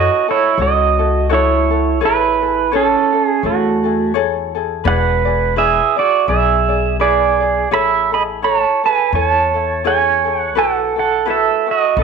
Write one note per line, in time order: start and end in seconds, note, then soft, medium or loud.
0.00 0.27 E4 medium
0.00 0.27 F#4 medium
0.00 0.27 A4 medium
0.00 0.27 C#5 medium
0.00 0.30 D#5 medium
0.28 0.58 E4 soft
0.28 0.58 E4 medium
0.28 0.57 F#4 soft
0.28 0.58 A4 medium
0.28 0.61 C#5 medium
0.57 2.01 C#2 medium
0.57 0.98 E4 medium
0.57 0.99 F#4 medium
0.57 0.97 A4 medium
0.57 0.98 C#5 medium
0.62 1.27 F#4 medium
0.62 1.34 D#5 loud
0.99 1.29 E4 soft
0.99 1.28 F#4 soft
0.99 1.29 A4 soft
1.29 1.70 E4 medium
1.29 1.99 E4 medium
1.29 1.70 F#4 medium
1.29 1.69 A4 medium
1.29 1.70 C#5 medium
1.34 2.05 C#5 medium
1.70 2.00 E4 soft
1.70 2.00 F#4 soft
1.70 2.01 A4 medium
2.00 2.94 A1 medium
2.00 2.42 E4 medium
2.00 2.41 G#4 medium
2.00 2.40 A4 medium
2.00 2.41 C#5 medium
2.05 2.70 E4 medium
2.05 2.77 B4 medium
2.41 2.71 E4 soft
2.41 2.72 G#4 soft
2.41 2.72 A4 soft
2.71 3.41 C#4 medium
2.71 3.13 E4 medium
2.71 3.12 A4 medium
2.71 3.12 C#5 medium
2.76 3.26 A4 medium
3.13 3.42 E4 soft
3.13 3.43 A4 soft
3.26 3.47 G#4 medium
3.42 4.87 E2 medium
3.42 4.12 A3 medium
3.42 3.84 E4 medium
3.42 4.12 F#4 medium
3.42 3.84 G#4 medium
3.42 3.82 A4 medium
3.42 3.84 C#5 medium
3.83 4.13 E4 soft
3.83 4.14 G#4 soft
3.83 4.14 A4 medium
4.14 4.55 E4 medium
4.14 4.54 G#4 medium
4.14 4.53 A4 medium
4.14 4.55 C#5 medium
4.55 4.83 E4 soft
4.55 4.84 G#4 medium
4.55 4.85 A4 medium
4.84 5.78 E1 medium
4.84 5.26 E4 medium
4.84 5.25 G#4 medium
4.84 5.26 B4 medium
4.84 5.24 D5 medium
4.84 5.58 F#5 medium
4.89 5.55 B4 medium
5.25 5.56 E4 soft
5.25 5.55 G#4 soft
5.25 5.56 D5 medium
5.56 5.97 E4 medium
5.56 5.96 G#4 medium
5.56 5.97 B4 medium
5.56 5.95 D5 medium
5.56 5.99 E5 medium
5.96 6.27 E4 soft
5.96 6.27 F#4 medium
5.96 6.28 G#4 soft
5.96 6.28 D5 medium
5.96 6.29 D5 loud
6.27 7.70 B1 medium
6.27 6.69 E4 medium
6.27 6.68 G#4 medium
6.27 6.96 G#4 medium
6.27 6.68 B4 medium
6.27 6.67 D5 medium
6.27 6.96 E5 medium
6.68 6.99 E4 soft
6.68 7.00 G#4 soft
6.68 6.99 D5 soft
7.00 7.41 E4 medium
7.00 7.40 G#4 medium
7.00 7.68 G#4 medium
7.00 7.40 B4 medium
7.00 7.74 D5 medium
7.00 7.39 D5 medium
7.40 7.70 E4 soft
7.40 7.70 G#4 soft
7.40 7.71 D5 soft
7.70 8.63 A1 medium
7.70 8.12 E4 medium
7.70 8.12 G#4 medium
7.70 8.10 A4 medium
7.70 8.12 C#5 medium
7.70 8.13 B5 loud
7.74 8.11 E5 medium
8.12 8.42 E4 soft
8.12 8.42 G#4 soft
8.12 8.42 A4 medium
8.12 8.22 D#5 medium
8.12 8.22 B5 loud
8.42 8.83 E4 medium
8.42 8.82 A4 medium
8.42 8.83 C#5 medium
8.42 8.81 C#5 medium
8.42 8.85 A5 medium
8.83 9.13 E4 soft
8.83 9.14 G#4 soft
8.83 9.14 A4 soft
8.83 9.13 B4 medium
8.83 9.15 G#5 loud
9.13 10.55 E2 medium
9.13 9.54 E4 medium
9.13 9.53 A4 medium
9.13 9.54 C#5 medium
9.13 9.81 C#5 medium
9.13 9.26 G#5 loud
9.26 9.87 A5 loud
9.54 9.84 E4 soft
9.54 9.84 A4 medium
9.84 10.25 E4 medium
9.84 10.24 G#4 medium
9.84 10.23 A4 medium
9.84 10.25 C#5 medium
9.84 10.53 C#5 medium
9.84 10.40 G#5 medium
10.24 10.55 E4 soft
10.24 10.55 G#4 soft
10.24 10.55 A4 soft
10.40 10.59 F#5 medium
10.55 11.48 B1 loud
10.55 10.96 E4 medium
10.55 10.96 F#4 medium
10.55 10.95 A4 medium
10.55 10.96 B4 medium
10.55 10.98 F#5 loud
10.96 11.25 E4 soft
10.96 11.26 F#4 soft
10.96 11.26 A4 medium
10.96 11.29 F#5 medium
11.00 11.27 A4 medium
11.26 11.67 E4 medium
11.26 11.66 F#4 medium
11.26 11.65 A4 medium
11.26 11.67 B4 medium
11.30 11.66 A4 medium
11.30 11.70 E5 medium
11.67 11.98 E4 soft
11.67 11.97 F#4 soft
11.67 11.97 A4 soft
11.71 11.98 F#4 medium
11.71 12.01 D#5 medium
11.97 12.03 B1 medium
11.97 12.03 D#4 medium
11.97 12.03 F#4 medium
11.97 12.03 A4 medium
11.97 12.03 B4 medium